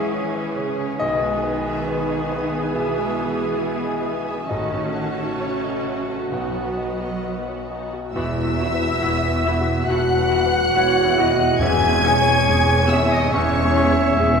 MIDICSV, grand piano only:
0, 0, Header, 1, 2, 480
1, 0, Start_track
1, 0, Key_signature, 4, "major"
1, 0, Tempo, 869565
1, 558, Time_signature, 4, 2, 24, 8
1, 2478, Tempo, 913242
1, 4398, Tempo, 862069
1, 7882, End_track
2, 0, Start_track
2, 0, Title_t, "Grand piano"
2, 0, Program_c, 0, 0
2, 0, Control_c, 0, 64, 127
2, 0, Note_on_c, 0, 44, 49
2, 0, Note_on_c, 0, 56, 43
2, 0, Note_on_c, 0, 68, 47
2, 0, Note_on_c, 0, 71, 37
2, 0, Note_on_c, 0, 73, 45
2, 0, Note_on_c, 0, 76, 71
2, 0, Note_on_c, 0, 78, 75
2, 78, Note_off_c, 0, 73, 0
2, 78, Note_on_c, 0, 73, 42
2, 151, Note_off_c, 0, 68, 0
2, 195, Note_off_c, 0, 71, 0
2, 195, Note_on_c, 0, 71, 40
2, 269, Note_off_c, 0, 73, 0
2, 291, Note_off_c, 0, 76, 0
2, 315, Note_on_c, 0, 73, 42
2, 316, Note_off_c, 0, 71, 0
2, 434, Note_on_c, 0, 68, 43
2, 508, Note_off_c, 0, 73, 0
2, 549, Note_on_c, 0, 75, 91
2, 556, Note_off_c, 0, 68, 0
2, 558, Note_on_c, 0, 35, 55
2, 567, Control_c, 0, 64, 0
2, 570, Note_off_c, 0, 44, 0
2, 573, Note_off_c, 0, 56, 0
2, 573, Note_off_c, 0, 78, 0
2, 654, Control_c, 0, 64, 127
2, 677, Note_on_c, 0, 56, 46
2, 790, Note_on_c, 0, 71, 49
2, 869, Note_off_c, 0, 56, 0
2, 915, Note_on_c, 0, 68, 43
2, 986, Note_off_c, 0, 71, 0
2, 1037, Note_on_c, 0, 71, 45
2, 1108, Note_off_c, 0, 68, 0
2, 1151, Note_off_c, 0, 75, 0
2, 1160, Note_on_c, 0, 75, 38
2, 1229, Note_off_c, 0, 71, 0
2, 1276, Note_on_c, 0, 71, 46
2, 1279, Note_off_c, 0, 75, 0
2, 1405, Note_on_c, 0, 68, 41
2, 1469, Note_off_c, 0, 71, 0
2, 1496, Note_off_c, 0, 35, 0
2, 1520, Note_on_c, 0, 47, 45
2, 1521, Note_on_c, 0, 76, 66
2, 1593, Note_off_c, 0, 68, 0
2, 1644, Note_on_c, 0, 56, 43
2, 1710, Note_off_c, 0, 47, 0
2, 1752, Note_off_c, 0, 76, 0
2, 1761, Note_on_c, 0, 76, 43
2, 1832, Note_off_c, 0, 56, 0
2, 1885, Note_on_c, 0, 68, 43
2, 1950, Note_off_c, 0, 76, 0
2, 2002, Note_on_c, 0, 76, 41
2, 2072, Note_off_c, 0, 68, 0
2, 2122, Note_on_c, 0, 75, 36
2, 2191, Note_off_c, 0, 76, 0
2, 2239, Note_off_c, 0, 75, 0
2, 2239, Note_on_c, 0, 76, 38
2, 2358, Note_on_c, 0, 68, 39
2, 2432, Note_off_c, 0, 76, 0
2, 2479, Note_on_c, 0, 75, 66
2, 2480, Note_off_c, 0, 68, 0
2, 2489, Note_on_c, 0, 33, 53
2, 2490, Control_c, 0, 64, 0
2, 2575, Control_c, 0, 64, 127
2, 2607, Note_on_c, 0, 57, 42
2, 2721, Note_on_c, 0, 78, 41
2, 2789, Note_off_c, 0, 57, 0
2, 2844, Note_on_c, 0, 66, 36
2, 2906, Note_off_c, 0, 78, 0
2, 2928, Note_off_c, 0, 75, 0
2, 2956, Note_on_c, 0, 73, 57
2, 2963, Note_on_c, 0, 76, 38
2, 3027, Note_off_c, 0, 66, 0
2, 3082, Note_on_c, 0, 75, 31
2, 3149, Note_off_c, 0, 76, 0
2, 3197, Note_off_c, 0, 75, 0
2, 3200, Note_on_c, 0, 76, 42
2, 3323, Note_on_c, 0, 66, 35
2, 3393, Note_off_c, 0, 76, 0
2, 3420, Note_off_c, 0, 73, 0
2, 3421, Note_off_c, 0, 33, 0
2, 3437, Note_on_c, 0, 35, 46
2, 3442, Note_off_c, 0, 66, 0
2, 3446, Note_on_c, 0, 78, 59
2, 3448, Control_c, 0, 64, 0
2, 3537, Control_c, 0, 64, 127
2, 3559, Note_on_c, 0, 54, 35
2, 3679, Note_on_c, 0, 75, 36
2, 3754, Note_off_c, 0, 54, 0
2, 3798, Note_on_c, 0, 66, 35
2, 3873, Note_off_c, 0, 75, 0
2, 3924, Note_on_c, 0, 75, 38
2, 3992, Note_off_c, 0, 66, 0
2, 4046, Note_on_c, 0, 73, 31
2, 4115, Note_off_c, 0, 75, 0
2, 4146, Note_off_c, 0, 78, 0
2, 4164, Note_off_c, 0, 73, 0
2, 4167, Note_on_c, 0, 75, 32
2, 4287, Note_on_c, 0, 66, 33
2, 4354, Note_off_c, 0, 75, 0
2, 4377, Note_off_c, 0, 35, 0
2, 4401, Note_off_c, 0, 66, 0
2, 4406, Note_on_c, 0, 40, 58
2, 4409, Control_c, 0, 64, 0
2, 4495, Control_c, 0, 64, 127
2, 4562, Note_on_c, 0, 54, 46
2, 4733, Note_on_c, 0, 71, 50
2, 4821, Note_off_c, 0, 54, 0
2, 4887, Note_on_c, 0, 66, 51
2, 4987, Note_off_c, 0, 71, 0
2, 5050, Note_on_c, 0, 76, 43
2, 5143, Note_off_c, 0, 66, 0
2, 5212, Note_on_c, 0, 66, 52
2, 5304, Note_off_c, 0, 76, 0
2, 5349, Note_off_c, 0, 40, 0
2, 5363, Note_on_c, 0, 47, 51
2, 5465, Note_off_c, 0, 66, 0
2, 5526, Note_on_c, 0, 54, 44
2, 5622, Note_off_c, 0, 47, 0
2, 5690, Note_on_c, 0, 71, 50
2, 5784, Note_off_c, 0, 54, 0
2, 5848, Note_on_c, 0, 66, 54
2, 5946, Note_off_c, 0, 71, 0
2, 6013, Note_on_c, 0, 64, 59
2, 6104, Note_off_c, 0, 66, 0
2, 6186, Note_on_c, 0, 66, 46
2, 6268, Note_off_c, 0, 64, 0
2, 6335, Note_on_c, 0, 40, 67
2, 6338, Note_off_c, 0, 66, 0
2, 6341, Control_c, 0, 64, 0
2, 6421, Control_c, 0, 64, 127
2, 6502, Note_on_c, 0, 56, 52
2, 6661, Note_on_c, 0, 73, 57
2, 6754, Note_off_c, 0, 56, 0
2, 6817, Note_on_c, 0, 68, 54
2, 6913, Note_off_c, 0, 73, 0
2, 6985, Note_on_c, 0, 73, 58
2, 7070, Note_off_c, 0, 68, 0
2, 7141, Note_on_c, 0, 68, 65
2, 7233, Note_off_c, 0, 73, 0
2, 7270, Note_off_c, 0, 40, 0
2, 7294, Note_on_c, 0, 40, 67
2, 7389, Note_off_c, 0, 68, 0
2, 7463, Note_on_c, 0, 56, 54
2, 7615, Note_on_c, 0, 73, 56
2, 7707, Note_off_c, 0, 56, 0
2, 7776, Note_on_c, 0, 68, 61
2, 7862, Note_off_c, 0, 73, 0
2, 7882, Note_off_c, 0, 40, 0
2, 7882, Note_off_c, 0, 68, 0
2, 7882, End_track
0, 0, End_of_file